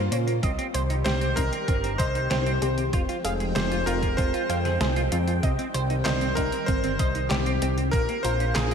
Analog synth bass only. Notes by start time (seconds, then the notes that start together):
0.12 A#2
0.43 C2
0.74 C2
1.06 C2
1.37 C2
1.68 G1
1.99 C2
2.31 C2
2.62 C2
2.93 F1
3.24 F1
3.56 F1
3.87 F1
4.18 F1
4.49 F2
4.81 C2
5.12 F2
5.43 C2
5.74 C2
6.06 C2
6.37 C2
6.68 G1
6.99 C2
7.31 C2
7.62 C2
7.93 A#1
8.24 A#1
8.56 A#1